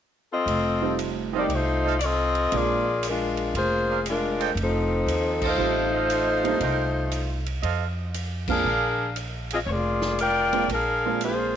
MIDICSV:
0, 0, Header, 1, 6, 480
1, 0, Start_track
1, 0, Tempo, 510638
1, 449, Time_signature, 4, 2, 24, 8
1, 10869, End_track
2, 0, Start_track
2, 0, Title_t, "Trumpet section"
2, 0, Program_c, 0, 61
2, 1257, Note_on_c, 0, 72, 72
2, 1258, Note_on_c, 0, 69, 73
2, 1258, Note_on_c, 0, 75, 66
2, 1258, Note_on_c, 0, 77, 87
2, 1361, Note_off_c, 0, 69, 0
2, 1361, Note_off_c, 0, 72, 0
2, 1361, Note_off_c, 0, 75, 0
2, 1361, Note_off_c, 0, 77, 0
2, 1733, Note_on_c, 0, 69, 81
2, 1733, Note_on_c, 0, 72, 65
2, 1735, Note_on_c, 0, 75, 71
2, 1735, Note_on_c, 0, 77, 83
2, 1838, Note_off_c, 0, 69, 0
2, 1838, Note_off_c, 0, 72, 0
2, 1839, Note_off_c, 0, 75, 0
2, 1839, Note_off_c, 0, 77, 0
2, 3654, Note_on_c, 0, 74, 73
2, 3654, Note_on_c, 0, 77, 83
2, 3655, Note_on_c, 0, 70, 70
2, 3657, Note_on_c, 0, 68, 76
2, 3758, Note_off_c, 0, 74, 0
2, 3758, Note_off_c, 0, 77, 0
2, 3759, Note_off_c, 0, 70, 0
2, 3760, Note_off_c, 0, 68, 0
2, 4131, Note_on_c, 0, 69, 86
2, 4134, Note_on_c, 0, 79, 95
2, 4135, Note_on_c, 0, 75, 78
2, 4136, Note_on_c, 0, 72, 73
2, 4237, Note_off_c, 0, 69, 0
2, 4238, Note_off_c, 0, 79, 0
2, 4239, Note_off_c, 0, 75, 0
2, 4240, Note_off_c, 0, 72, 0
2, 5097, Note_on_c, 0, 69, 83
2, 5098, Note_on_c, 0, 75, 75
2, 5100, Note_on_c, 0, 72, 81
2, 5100, Note_on_c, 0, 77, 90
2, 5541, Note_off_c, 0, 69, 0
2, 5541, Note_off_c, 0, 75, 0
2, 5542, Note_off_c, 0, 77, 0
2, 5543, Note_off_c, 0, 72, 0
2, 5583, Note_on_c, 0, 69, 78
2, 5583, Note_on_c, 0, 75, 73
2, 5583, Note_on_c, 0, 77, 89
2, 5585, Note_on_c, 0, 72, 82
2, 6182, Note_off_c, 0, 69, 0
2, 6182, Note_off_c, 0, 75, 0
2, 6183, Note_off_c, 0, 72, 0
2, 6183, Note_off_c, 0, 77, 0
2, 6217, Note_on_c, 0, 79, 77
2, 6218, Note_on_c, 0, 70, 72
2, 6218, Note_on_c, 0, 75, 65
2, 6220, Note_on_c, 0, 72, 65
2, 6431, Note_off_c, 0, 75, 0
2, 6431, Note_off_c, 0, 79, 0
2, 6432, Note_off_c, 0, 70, 0
2, 6433, Note_off_c, 0, 72, 0
2, 7171, Note_on_c, 0, 75, 70
2, 7172, Note_on_c, 0, 69, 76
2, 7172, Note_on_c, 0, 77, 81
2, 7173, Note_on_c, 0, 72, 69
2, 7387, Note_off_c, 0, 75, 0
2, 7388, Note_off_c, 0, 69, 0
2, 7388, Note_off_c, 0, 77, 0
2, 7389, Note_off_c, 0, 72, 0
2, 8131, Note_on_c, 0, 74, 57
2, 8131, Note_on_c, 0, 77, 69
2, 8133, Note_on_c, 0, 70, 57
2, 8135, Note_on_c, 0, 68, 72
2, 8347, Note_off_c, 0, 77, 0
2, 8348, Note_off_c, 0, 74, 0
2, 8349, Note_off_c, 0, 70, 0
2, 8350, Note_off_c, 0, 68, 0
2, 10869, End_track
3, 0, Start_track
3, 0, Title_t, "Saxophone section"
3, 0, Program_c, 1, 65
3, 305, Note_on_c, 1, 69, 74
3, 307, Note_on_c, 1, 60, 80
3, 311, Note_on_c, 1, 75, 94
3, 315, Note_on_c, 1, 65, 80
3, 898, Note_off_c, 1, 69, 0
3, 899, Note_off_c, 1, 60, 0
3, 901, Note_off_c, 1, 75, 0
3, 902, Note_off_c, 1, 65, 0
3, 1290, Note_on_c, 1, 58, 75
3, 1291, Note_on_c, 1, 74, 87
3, 1292, Note_on_c, 1, 63, 76
3, 1292, Note_on_c, 1, 67, 73
3, 1418, Note_off_c, 1, 58, 0
3, 1419, Note_off_c, 1, 63, 0
3, 1419, Note_off_c, 1, 67, 0
3, 1419, Note_off_c, 1, 74, 0
3, 1438, Note_on_c, 1, 63, 80
3, 1450, Note_on_c, 1, 65, 77
3, 1450, Note_on_c, 1, 72, 87
3, 1451, Note_on_c, 1, 57, 78
3, 1859, Note_off_c, 1, 63, 0
3, 1865, Note_off_c, 1, 65, 0
3, 1865, Note_off_c, 1, 72, 0
3, 1866, Note_off_c, 1, 57, 0
3, 1873, Note_on_c, 1, 74, 69
3, 1902, Note_off_c, 1, 74, 0
3, 1916, Note_on_c, 1, 75, 98
3, 1917, Note_on_c, 1, 60, 91
3, 1918, Note_on_c, 1, 69, 84
3, 1920, Note_on_c, 1, 65, 92
3, 2381, Note_off_c, 1, 75, 0
3, 2382, Note_off_c, 1, 60, 0
3, 2383, Note_off_c, 1, 65, 0
3, 2383, Note_off_c, 1, 69, 0
3, 2402, Note_on_c, 1, 65, 82
3, 2403, Note_on_c, 1, 58, 88
3, 2405, Note_on_c, 1, 68, 80
3, 2406, Note_on_c, 1, 74, 97
3, 2865, Note_off_c, 1, 58, 0
3, 2865, Note_off_c, 1, 65, 0
3, 2866, Note_off_c, 1, 68, 0
3, 2866, Note_off_c, 1, 74, 0
3, 2892, Note_on_c, 1, 70, 79
3, 2898, Note_on_c, 1, 56, 70
3, 2903, Note_on_c, 1, 62, 69
3, 2903, Note_on_c, 1, 65, 69
3, 3317, Note_off_c, 1, 70, 0
3, 3321, Note_off_c, 1, 56, 0
3, 3323, Note_off_c, 1, 62, 0
3, 3323, Note_off_c, 1, 65, 0
3, 3351, Note_on_c, 1, 72, 92
3, 3352, Note_on_c, 1, 65, 73
3, 3352, Note_on_c, 1, 68, 78
3, 3354, Note_on_c, 1, 58, 71
3, 3786, Note_off_c, 1, 65, 0
3, 3786, Note_off_c, 1, 72, 0
3, 3787, Note_off_c, 1, 68, 0
3, 3788, Note_off_c, 1, 58, 0
3, 3836, Note_on_c, 1, 56, 75
3, 3837, Note_on_c, 1, 65, 77
3, 3841, Note_on_c, 1, 70, 89
3, 3843, Note_on_c, 1, 62, 79
3, 4269, Note_off_c, 1, 56, 0
3, 4269, Note_off_c, 1, 65, 0
3, 4271, Note_off_c, 1, 70, 0
3, 4272, Note_off_c, 1, 62, 0
3, 4337, Note_on_c, 1, 60, 82
3, 4341, Note_on_c, 1, 69, 90
3, 4343, Note_on_c, 1, 63, 77
3, 4347, Note_on_c, 1, 53, 71
3, 5114, Note_off_c, 1, 60, 0
3, 5116, Note_off_c, 1, 69, 0
3, 5117, Note_off_c, 1, 63, 0
3, 5119, Note_off_c, 1, 53, 0
3, 5137, Note_on_c, 1, 63, 78
3, 5141, Note_on_c, 1, 57, 79
3, 5144, Note_on_c, 1, 65, 77
3, 5144, Note_on_c, 1, 72, 94
3, 7033, Note_off_c, 1, 63, 0
3, 7036, Note_off_c, 1, 57, 0
3, 7037, Note_off_c, 1, 65, 0
3, 7037, Note_off_c, 1, 72, 0
3, 7988, Note_on_c, 1, 68, 81
3, 7992, Note_on_c, 1, 77, 92
3, 7995, Note_on_c, 1, 62, 78
3, 7995, Note_on_c, 1, 70, 73
3, 8580, Note_off_c, 1, 68, 0
3, 8581, Note_off_c, 1, 77, 0
3, 8583, Note_off_c, 1, 62, 0
3, 8583, Note_off_c, 1, 70, 0
3, 8951, Note_on_c, 1, 68, 65
3, 8952, Note_on_c, 1, 75, 85
3, 8955, Note_on_c, 1, 60, 74
3, 8959, Note_on_c, 1, 65, 69
3, 8998, Note_off_c, 1, 68, 0
3, 8999, Note_off_c, 1, 75, 0
3, 9001, Note_off_c, 1, 60, 0
3, 9004, Note_off_c, 1, 65, 0
3, 9078, Note_on_c, 1, 73, 68
3, 9105, Note_off_c, 1, 73, 0
3, 9118, Note_on_c, 1, 58, 75
3, 9120, Note_on_c, 1, 65, 71
3, 9123, Note_on_c, 1, 68, 70
3, 9123, Note_on_c, 1, 74, 80
3, 9584, Note_off_c, 1, 58, 0
3, 9584, Note_off_c, 1, 65, 0
3, 9586, Note_off_c, 1, 68, 0
3, 9586, Note_off_c, 1, 74, 0
3, 9593, Note_on_c, 1, 70, 92
3, 9598, Note_on_c, 1, 65, 81
3, 9601, Note_on_c, 1, 74, 94
3, 9606, Note_on_c, 1, 79, 104
3, 10029, Note_off_c, 1, 70, 0
3, 10031, Note_off_c, 1, 65, 0
3, 10033, Note_off_c, 1, 74, 0
3, 10036, Note_off_c, 1, 79, 0
3, 10077, Note_on_c, 1, 70, 88
3, 10078, Note_on_c, 1, 77, 94
3, 10080, Note_on_c, 1, 62, 80
3, 10081, Note_on_c, 1, 68, 80
3, 10543, Note_off_c, 1, 70, 0
3, 10544, Note_off_c, 1, 77, 0
3, 10545, Note_off_c, 1, 62, 0
3, 10545, Note_off_c, 1, 68, 0
3, 10553, Note_on_c, 1, 65, 73
3, 10557, Note_on_c, 1, 58, 68
3, 10563, Note_on_c, 1, 68, 70
3, 10564, Note_on_c, 1, 72, 73
3, 10869, Note_off_c, 1, 58, 0
3, 10869, Note_off_c, 1, 65, 0
3, 10869, Note_off_c, 1, 68, 0
3, 10869, Note_off_c, 1, 72, 0
3, 10869, End_track
4, 0, Start_track
4, 0, Title_t, "Grand piano"
4, 0, Program_c, 2, 0
4, 768, Note_on_c, 2, 57, 55
4, 771, Note_on_c, 2, 55, 60
4, 771, Note_on_c, 2, 60, 51
4, 773, Note_on_c, 2, 65, 61
4, 776, Note_on_c, 2, 63, 53
4, 1217, Note_off_c, 2, 57, 0
4, 1218, Note_off_c, 2, 55, 0
4, 1218, Note_off_c, 2, 60, 0
4, 1219, Note_off_c, 2, 65, 0
4, 1220, Note_off_c, 2, 63, 0
4, 1246, Note_on_c, 2, 55, 63
4, 1249, Note_on_c, 2, 57, 54
4, 1249, Note_on_c, 2, 63, 54
4, 1249, Note_on_c, 2, 67, 69
4, 1250, Note_on_c, 2, 60, 54
4, 1390, Note_off_c, 2, 55, 0
4, 1391, Note_off_c, 2, 57, 0
4, 1391, Note_off_c, 2, 63, 0
4, 1391, Note_off_c, 2, 67, 0
4, 1392, Note_off_c, 2, 60, 0
4, 2369, Note_on_c, 2, 56, 48
4, 2370, Note_on_c, 2, 58, 41
4, 2370, Note_on_c, 2, 60, 44
4, 2372, Note_on_c, 2, 62, 46
4, 2378, Note_on_c, 2, 65, 53
4, 2658, Note_off_c, 2, 56, 0
4, 2658, Note_off_c, 2, 58, 0
4, 2658, Note_off_c, 2, 60, 0
4, 2659, Note_off_c, 2, 62, 0
4, 2663, Note_off_c, 2, 65, 0
4, 5248, Note_on_c, 2, 55, 54
4, 5248, Note_on_c, 2, 57, 44
4, 5249, Note_on_c, 2, 63, 47
4, 5251, Note_on_c, 2, 60, 47
4, 5251, Note_on_c, 2, 65, 57
4, 5538, Note_off_c, 2, 55, 0
4, 5538, Note_off_c, 2, 57, 0
4, 5538, Note_off_c, 2, 63, 0
4, 5539, Note_off_c, 2, 60, 0
4, 5539, Note_off_c, 2, 65, 0
4, 6047, Note_on_c, 2, 55, 57
4, 6053, Note_on_c, 2, 60, 54
4, 6054, Note_on_c, 2, 58, 55
4, 6054, Note_on_c, 2, 62, 54
4, 6056, Note_on_c, 2, 63, 68
4, 6190, Note_off_c, 2, 55, 0
4, 6193, Note_off_c, 2, 60, 0
4, 6194, Note_off_c, 2, 58, 0
4, 6194, Note_off_c, 2, 62, 0
4, 6195, Note_off_c, 2, 63, 0
4, 7975, Note_on_c, 2, 60, 52
4, 7977, Note_on_c, 2, 56, 53
4, 7978, Note_on_c, 2, 58, 56
4, 7978, Note_on_c, 2, 62, 50
4, 7980, Note_on_c, 2, 65, 65
4, 8115, Note_off_c, 2, 60, 0
4, 8116, Note_off_c, 2, 56, 0
4, 8116, Note_off_c, 2, 58, 0
4, 8116, Note_off_c, 2, 62, 0
4, 8117, Note_off_c, 2, 65, 0
4, 9890, Note_on_c, 2, 62, 50
4, 9896, Note_on_c, 2, 56, 56
4, 9896, Note_on_c, 2, 58, 55
4, 9897, Note_on_c, 2, 60, 50
4, 9904, Note_on_c, 2, 65, 63
4, 10033, Note_off_c, 2, 62, 0
4, 10036, Note_off_c, 2, 56, 0
4, 10036, Note_off_c, 2, 58, 0
4, 10036, Note_off_c, 2, 60, 0
4, 10040, Note_off_c, 2, 65, 0
4, 10394, Note_on_c, 2, 58, 51
4, 10396, Note_on_c, 2, 62, 50
4, 10396, Note_on_c, 2, 65, 68
4, 10397, Note_on_c, 2, 56, 56
4, 10399, Note_on_c, 2, 60, 51
4, 10869, Note_off_c, 2, 56, 0
4, 10869, Note_off_c, 2, 58, 0
4, 10869, Note_off_c, 2, 60, 0
4, 10869, Note_off_c, 2, 62, 0
4, 10869, Note_off_c, 2, 65, 0
4, 10869, End_track
5, 0, Start_track
5, 0, Title_t, "Upright bass"
5, 0, Program_c, 3, 32
5, 432, Note_on_c, 3, 29, 78
5, 1362, Note_off_c, 3, 29, 0
5, 1398, Note_on_c, 3, 36, 74
5, 2324, Note_off_c, 3, 36, 0
5, 2368, Note_on_c, 3, 34, 81
5, 3290, Note_off_c, 3, 34, 0
5, 3327, Note_on_c, 3, 29, 75
5, 4249, Note_off_c, 3, 29, 0
5, 4278, Note_on_c, 3, 29, 84
5, 4728, Note_off_c, 3, 29, 0
5, 4760, Note_on_c, 3, 39, 84
5, 5210, Note_off_c, 3, 39, 0
5, 5242, Note_on_c, 3, 33, 80
5, 6167, Note_off_c, 3, 33, 0
5, 6205, Note_on_c, 3, 36, 80
5, 7129, Note_off_c, 3, 36, 0
5, 7170, Note_on_c, 3, 41, 71
5, 8091, Note_off_c, 3, 41, 0
5, 8124, Note_on_c, 3, 34, 77
5, 9049, Note_off_c, 3, 34, 0
5, 9084, Note_on_c, 3, 29, 79
5, 10009, Note_off_c, 3, 29, 0
5, 10033, Note_on_c, 3, 34, 75
5, 10869, Note_off_c, 3, 34, 0
5, 10869, End_track
6, 0, Start_track
6, 0, Title_t, "Drums"
6, 447, Note_on_c, 9, 51, 59
6, 541, Note_off_c, 9, 51, 0
6, 927, Note_on_c, 9, 44, 50
6, 927, Note_on_c, 9, 51, 64
6, 1021, Note_off_c, 9, 44, 0
6, 1021, Note_off_c, 9, 51, 0
6, 1406, Note_on_c, 9, 51, 52
6, 1500, Note_off_c, 9, 51, 0
6, 1884, Note_on_c, 9, 44, 56
6, 1884, Note_on_c, 9, 51, 68
6, 1978, Note_off_c, 9, 44, 0
6, 1978, Note_off_c, 9, 51, 0
6, 2208, Note_on_c, 9, 51, 42
6, 2302, Note_off_c, 9, 51, 0
6, 2366, Note_on_c, 9, 51, 58
6, 2460, Note_off_c, 9, 51, 0
6, 2845, Note_on_c, 9, 44, 52
6, 2845, Note_on_c, 9, 51, 69
6, 2939, Note_off_c, 9, 44, 0
6, 2939, Note_off_c, 9, 51, 0
6, 3169, Note_on_c, 9, 51, 44
6, 3263, Note_off_c, 9, 51, 0
6, 3335, Note_on_c, 9, 51, 59
6, 3429, Note_off_c, 9, 51, 0
6, 3813, Note_on_c, 9, 44, 44
6, 3813, Note_on_c, 9, 51, 70
6, 3907, Note_off_c, 9, 44, 0
6, 3907, Note_off_c, 9, 51, 0
6, 4141, Note_on_c, 9, 51, 44
6, 4235, Note_off_c, 9, 51, 0
6, 4296, Note_on_c, 9, 51, 57
6, 4390, Note_off_c, 9, 51, 0
6, 4777, Note_on_c, 9, 44, 46
6, 4777, Note_on_c, 9, 51, 68
6, 4871, Note_off_c, 9, 44, 0
6, 4871, Note_off_c, 9, 51, 0
6, 5091, Note_on_c, 9, 49, 75
6, 5092, Note_on_c, 9, 36, 80
6, 5185, Note_off_c, 9, 49, 0
6, 5186, Note_off_c, 9, 36, 0
6, 5731, Note_on_c, 9, 44, 51
6, 5731, Note_on_c, 9, 51, 70
6, 5825, Note_off_c, 9, 44, 0
6, 5825, Note_off_c, 9, 51, 0
6, 6060, Note_on_c, 9, 51, 43
6, 6154, Note_off_c, 9, 51, 0
6, 6208, Note_on_c, 9, 51, 54
6, 6302, Note_off_c, 9, 51, 0
6, 6687, Note_on_c, 9, 44, 57
6, 6687, Note_on_c, 9, 51, 58
6, 6781, Note_off_c, 9, 44, 0
6, 6781, Note_off_c, 9, 51, 0
6, 7016, Note_on_c, 9, 51, 47
6, 7110, Note_off_c, 9, 51, 0
6, 7174, Note_on_c, 9, 51, 61
6, 7268, Note_off_c, 9, 51, 0
6, 7654, Note_on_c, 9, 44, 51
6, 7654, Note_on_c, 9, 51, 64
6, 7748, Note_off_c, 9, 44, 0
6, 7748, Note_off_c, 9, 51, 0
6, 7967, Note_on_c, 9, 49, 72
6, 7970, Note_on_c, 9, 36, 77
6, 8061, Note_off_c, 9, 49, 0
6, 8064, Note_off_c, 9, 36, 0
6, 8609, Note_on_c, 9, 44, 51
6, 8609, Note_on_c, 9, 51, 66
6, 8703, Note_off_c, 9, 44, 0
6, 8703, Note_off_c, 9, 51, 0
6, 8934, Note_on_c, 9, 51, 70
6, 9028, Note_off_c, 9, 51, 0
6, 9413, Note_on_c, 9, 38, 52
6, 9507, Note_off_c, 9, 38, 0
6, 9574, Note_on_c, 9, 44, 53
6, 9574, Note_on_c, 9, 51, 58
6, 9668, Note_off_c, 9, 44, 0
6, 9668, Note_off_c, 9, 51, 0
6, 9894, Note_on_c, 9, 51, 44
6, 9988, Note_off_c, 9, 51, 0
6, 10052, Note_on_c, 9, 51, 59
6, 10146, Note_off_c, 9, 51, 0
6, 10534, Note_on_c, 9, 44, 55
6, 10534, Note_on_c, 9, 51, 58
6, 10628, Note_off_c, 9, 44, 0
6, 10628, Note_off_c, 9, 51, 0
6, 10869, End_track
0, 0, End_of_file